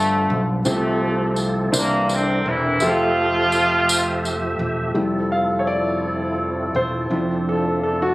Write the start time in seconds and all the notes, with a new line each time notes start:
Already playing: G1 G2 D3 F3 A3 B3 F4 G4 A4
0.30 B1
0.65 C2 C3 F3 A3 C4 F4 G#4 A4 C5, tambourine
0.69 F3 A3
0.73 A4
1.36 tambourine
1.72 C2 C3 D3 E3 A#3 C4 D4 E4 A#4 C5, tambourine
2.09 C3 C4, tambourine
2.46 E1 E3 E4
2.80 F1 F3 A3 C4 F4 G4 A4 E5, tambourine
3.52 tambourine
3.89 tambourine
4.25 tambourine
4.59 E1
4.94 F1 F3 G3 A3 C4 E4 G4
4.98 E4 A4
5.32 F5
5.59 C#5
5.67 D5
6.75 E1 C5
7.10 F1 F3 C4 D4 E4 A4
7.49 A4
7.83 A4
8.02 F#4